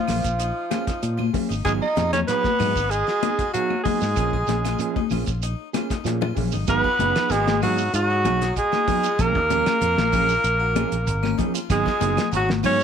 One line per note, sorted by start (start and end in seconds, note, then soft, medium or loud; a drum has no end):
0.00 1.31 F3 medium
0.00 1.31 F4 medium
0.08 0.22 A#1 medium
0.08 0.28 A#3 medium
0.08 0.32 F4 medium
0.08 snare soft
0.08 open hi-hat medium
0.08 low conga medium
0.08 claves medium
0.08 shekere medium
0.24 0.51 A#1 medium
0.24 kick medium
0.24 closed hi-hat medium
0.24 shekere medium
0.39 0.64 D#4 medium
0.39 closed hi-hat medium
0.39 shekere medium
0.71 0.91 A#3 medium
0.71 0.90 C#4 medium
0.71 0.84 F4 medium
0.71 0.90 G#4 medium
0.71 snare soft
0.71 closed hi-hat medium
0.71 high conga loud
0.71 claves medium
0.71 shekere soft
0.87 1.12 D#4 medium
0.87 kick medium
0.87 snare soft
0.87 closed hi-hat soft
0.87 shekere soft
1.03 1.29 A#2 medium
1.03 closed hi-hat medium
1.03 shekere medium
1.18 1.42 F4 medium
1.18 high conga medium
1.18 claves medium
1.33 1.53 A#3 soft
1.33 1.53 C#4 medium
1.33 1.53 G#4 medium
1.33 kick medium
1.33 open hi-hat medium
1.33 high conga medium
1.33 low conga medium
1.33 shekere soft
1.49 1.63 G#1 medium
1.49 1.61 D#4 medium
1.49 shekere medium
1.65 1.79 G#1 loud
1.65 1.84 F#3 medium
1.65 1.72 G#3 medium
1.65 1.84 B3 medium
1.65 1.84 D#4 medium
1.65 1.89 F4 loud
1.65 1.72 G#4 loud
1.65 1.85 G#4 medium
1.65 kick medium
1.65 closed hi-hat medium
1.65 claves medium
1.65 shekere medium
1.81 2.11 D#4 medium
1.81 2.11 D#5 medium
1.96 2.23 F2 medium
1.96 2.16 D#4 soft
1.96 2.21 F4 medium
1.96 2.16 G#4 medium
1.96 snare soft
1.96 closed hi-hat soft
1.96 high conga loud
1.96 shekere medium
2.13 2.20 C#4 medium
2.13 2.20 C#5 medium
2.13 snare soft
2.13 closed hi-hat medium
2.13 high conga medium
2.13 low conga medium
2.13 claves medium
2.13 shekere soft
2.28 2.48 F#3 soft
2.28 2.48 B3 medium
2.28 2.93 B3 medium
2.28 2.52 D#4 medium
2.28 2.48 D#4 medium
2.28 2.48 G#4 medium
2.28 2.92 B4 loud
2.28 snare soft
2.28 closed hi-hat medium
2.28 shekere medium
2.44 kick medium
2.44 snare soft
2.44 high conga medium
2.59 2.73 G#2 medium
2.59 2.79 B3 soft
2.59 2.79 D#4 medium
2.59 2.72 F#4 medium
2.59 2.79 G#4 medium
2.59 open hi-hat medium
2.59 low conga medium
2.59 claves medium
2.59 shekere medium
2.76 3.02 G#1 medium
2.76 3.00 D#4 medium
2.76 kick medium
2.76 shekere medium
2.90 3.53 G#3 medium
2.90 3.53 G#4 medium
2.90 closed hi-hat medium
2.90 shekere medium
3.07 3.31 F#4 medium
3.07 snare soft
3.22 3.42 B3 soft
3.22 3.42 D#4 soft
3.22 3.42 G#4 medium
3.22 closed hi-hat medium
3.22 high conga medium
3.22 claves medium
3.22 shekere soft
3.39 3.51 F#4 medium
3.39 kick medium
3.39 closed hi-hat soft
3.39 shekere soft
3.53 3.83 F#3 medium
3.53 3.73 F#3 medium
3.53 3.73 B3 medium
3.53 3.74 D#4 medium
3.53 3.83 F#4 medium
3.53 3.74 G#4 medium
3.53 3.78 F5 medium
3.53 closed hi-hat medium
3.53 shekere medium
3.70 high conga medium
3.70 claves medium
3.83 5.07 G#3 medium
3.83 4.05 B3 soft
3.83 4.05 D#4 medium
3.83 4.10 F#4 medium
3.83 5.06 G#4 medium
3.83 4.04 G#4 medium
3.83 kick medium
3.83 open hi-hat medium
3.83 high conga medium
3.83 low conga medium
3.83 shekere soft
4.01 4.14 G#2 loud
4.01 snare soft
4.01 shekere medium
4.16 4.43 A#1 loud
4.16 4.35 F3 medium
4.16 4.36 A#3 medium
4.16 4.36 C#4 medium
4.16 4.29 G#4 medium
4.16 4.36 G#4 medium
4.16 kick medium
4.16 closed hi-hat medium
4.16 claves medium
4.16 shekere medium
4.33 4.58 G#4 medium
4.33 kick medium
4.47 4.74 A#1 medium
4.47 4.68 A#3 soft
4.47 4.67 C#4 soft
4.47 4.67 G#4 medium
4.47 snare soft
4.47 closed hi-hat soft
4.47 high conga medium
4.47 shekere medium
4.64 4.89 F4 medium
4.64 snare soft
4.64 closed hi-hat medium
4.64 high conga medium
4.64 claves medium
4.64 shekere soft
4.79 4.98 F3 medium
4.79 4.99 A#3 medium
4.79 4.99 C#4 medium
4.79 4.99 G#4 medium
4.79 closed hi-hat medium
4.79 shekere medium
4.96 5.08 D#4 medium
4.96 kick medium
4.96 high conga medium
5.10 5.25 A#1 medium
5.10 5.30 A#3 medium
5.10 5.30 C#4 medium
5.10 5.36 F4 medium
5.10 5.30 G#4 medium
5.10 open hi-hat medium
5.10 low conga medium
5.10 claves medium
5.10 shekere medium
5.26 5.53 A#1 medium
5.26 kick medium
5.26 closed hi-hat medium
5.26 shekere medium
5.42 5.67 D#4 medium
5.42 closed hi-hat medium
5.42 shekere medium
5.73 5.93 A#3 soft
5.73 5.93 C#4 medium
5.73 5.87 F4 medium
5.73 5.93 G#4 medium
5.73 snare soft
5.73 closed hi-hat medium
5.73 high conga loud
5.73 claves medium
5.73 shekere soft
5.90 6.15 D#4 medium
5.90 kick medium
5.90 snare soft
5.90 closed hi-hat medium
5.90 high conga medium
5.90 shekere soft
6.04 6.31 A#2 medium
6.04 6.24 F3 medium
6.04 6.24 A#3 medium
6.04 6.24 C#4 medium
6.04 6.25 G#4 medium
6.04 snare soft
6.04 closed hi-hat medium
6.04 high conga medium
6.04 shekere medium
6.21 6.46 F4 medium
6.21 low conga loud
6.21 claves medium
6.35 6.51 A#1 medium
6.35 6.56 A#3 soft
6.35 6.55 C#4 soft
6.35 6.55 G#4 medium
6.35 kick medium
6.35 open hi-hat medium
6.35 low conga loud
6.35 shekere soft
6.52 6.67 G#1 medium
6.52 6.65 D#4 medium
6.52 low conga medium
6.52 shekere medium
6.67 6.81 G#1 loud
6.67 6.87 F#3 medium
6.67 6.87 B3 medium
6.67 7.33 B3 loud
6.67 6.87 D#4 medium
6.67 6.87 G#4 medium
6.67 7.33 B4 loud
6.67 kick loud
6.67 snare soft
6.67 closed hi-hat medium
6.67 claves medium
6.67 shekere medium
6.84 7.09 F4 medium
6.84 kick medium
6.99 7.12 F#1 loud
6.99 7.16 B3 medium
6.99 7.15 D#4 medium
6.99 7.14 G#4 medium
6.99 muted clean electric guitar stroke medium
6.99 closed hi-hat soft
6.99 high conga medium
6.99 shekere medium
7.15 7.35 B3 soft
7.15 7.35 D#4 soft
7.15 7.34 G#4 soft
7.15 snare medium
7.15 closed hi-hat soft
7.15 low conga medium
7.15 claves medium
7.15 shekere soft
7.30 7.64 G#1 loud
7.30 7.63 G#3 medium
7.30 7.55 F#4 medium
7.30 7.62 G#4 loud
7.30 snare soft
7.30 closed hi-hat medium
7.30 high conga medium
7.30 shekere medium
7.48 snare medium
7.48 high conga loud
7.62 7.88 G#2 medium
7.62 7.81 F#3 medium
7.62 7.92 F#3 medium
7.62 7.81 B3 medium
7.62 7.82 D#4 medium
7.62 7.92 F#4 medium
7.62 7.82 G#4 medium
7.62 7.87 F5 medium
7.62 open hi-hat medium
7.62 low conga medium
7.62 claves medium
7.62 shekere medium
7.78 shekere medium
7.94 8.26 G#2 loud
7.94 8.53 F#3 medium
7.94 8.06 F#4 medium
7.94 8.53 F#4 loud
7.94 closed hi-hat medium
7.94 shekere medium
8.10 8.22 D#4 medium
8.25 8.51 B1 medium
8.25 8.44 F#3 medium
8.25 8.44 B3 medium
8.25 8.44 D#4 medium
8.25 8.38 F#4 medium
8.25 8.44 G#4 medium
8.25 closed hi-hat soft
8.25 high conga loud
8.25 claves medium
8.25 shekere soft
8.41 8.66 G#4 medium
8.41 snare soft
8.41 closed hi-hat soft
8.41 shekere soft
8.56 9.23 G#3 medium
8.56 9.23 G#4 medium
8.56 kick medium
8.56 closed hi-hat medium
8.56 shekere medium
8.72 8.97 D#4 medium
8.72 snare soft
8.72 high conga medium
8.72 claves medium
8.87 9.07 F#3 medium
8.87 9.07 B3 medium
8.87 9.07 D#4 medium
8.87 9.07 G#4 medium
8.87 kick medium
8.87 open hi-hat medium
8.87 low conga medium
8.87 shekere soft
9.03 9.28 F4 medium
9.03 closed hi-hat soft
9.03 shekere medium
9.19 9.35 A#1 loud
9.19 9.38 F3 medium
9.19 9.38 A#3 medium
9.19 11.40 A#3 medium
9.19 9.39 C#4 medium
9.19 9.39 G#4 medium
9.19 11.40 A#4 loud
9.19 kick loud
9.19 closed hi-hat medium
9.19 claves medium
9.19 shekere medium
9.35 9.61 D#2 medium
9.35 9.47 D#4 medium
9.35 kick medium
9.50 9.67 F3 medium
9.50 9.67 A#3 medium
9.50 9.75 C#4 medium
9.50 9.67 C#4 medium
9.50 muted clean electric guitar stroke medium
9.50 closed hi-hat medium
9.50 high conga loud
9.50 shekere medium
9.66 9.86 A#3 soft
9.66 9.86 C#4 soft
9.66 9.85 G#4 medium
9.66 snare medium
9.66 closed hi-hat soft
9.66 high conga medium
9.66 claves medium
9.66 shekere soft
9.81 9.95 F2 medium
9.81 10.06 F4 medium
9.81 closed hi-hat medium
9.81 shekere medium
9.97 10.36 A#1 loud
9.97 snare medium
9.97 high conga medium
10.12 10.32 F3 medium
10.12 10.33 A#3 medium
10.12 10.25 C#4 medium
10.12 10.33 C#4 medium
10.12 10.33 G#4 medium
10.12 kick medium
10.12 open hi-hat medium
10.12 low conga medium
10.12 claves medium
10.12 shekere medium
10.29 10.53 F4 medium
10.29 shekere medium
10.44 10.84 A#1 loud
10.44 closed hi-hat medium
10.44 shekere medium
10.60 10.72 F#4 medium
10.75 10.95 F3 medium
10.75 10.95 A#3 medium
10.75 10.95 C#4 medium
10.75 11.00 F4 medium
10.75 10.95 G#4 medium
10.75 closed hi-hat medium
10.75 high conga medium
10.75 claves medium
10.75 shekere soft
10.92 11.05 A#1 medium
10.92 closed hi-hat medium
10.92 shekere soft
11.07 11.33 G#1 loud
11.07 kick medium
11.07 closed hi-hat medium
11.07 shekere medium
11.23 11.35 C#4 medium
11.23 snare soft
11.23 high conga medium
11.23 claves medium
11.38 11.58 F3 medium
11.38 11.58 A#3 medium
11.38 11.58 C#4 medium
11.38 11.51 D#4 medium
11.38 11.58 G#4 medium
11.38 kick medium
11.38 closed hi-hat medium
11.38 high conga medium
11.38 low conga medium
11.38 shekere soft
11.54 11.66 F4 medium
11.54 closed hi-hat medium
11.54 shekere medium
11.70 11.83 G#1 loud
11.70 11.89 F#3 medium
11.70 12.29 G#3 medium
11.70 11.89 B3 medium
11.70 11.89 D#4 medium
11.70 11.89 G#4 medium
11.70 12.30 G#4 loud
11.70 kick medium
11.70 snare soft
11.70 closed hi-hat medium
11.70 claves medium
11.70 shekere medium
11.86 12.10 F4 medium
11.86 kick medium
11.86 snare soft
12.01 12.15 F#1 loud
12.01 12.20 F#3 medium
12.01 12.20 B3 medium
12.01 12.21 D#4 medium
12.01 12.21 G#4 medium
12.01 closed hi-hat medium
12.01 high conga medium
12.01 shekere medium
12.17 snare medium
12.17 closed hi-hat medium
12.17 high conga medium
12.17 low conga medium
12.17 claves medium
12.17 shekere soft
12.32 12.65 G#1 loud
12.32 12.48 F#3 medium
12.32 12.56 F#4 medium
12.32 closed hi-hat medium
12.32 shekere medium
12.37 12.50 F#4 medium
12.49 snare medium
12.49 high conga medium
12.63 12.84 G#2 loud
12.63 12.80 F#3 medium
12.63 12.80 B3 medium
12.63 12.84 C#4 medium
12.63 12.79 D#4 medium
12.63 12.84 F4 medium
12.63 12.78 G#4 medium
12.63 12.84 C#5 loud
12.63 open hi-hat medium
12.63 low conga medium
12.63 claves medium
12.63 shekere medium
12.79 12.84 G#4 soft
12.79 shekere medium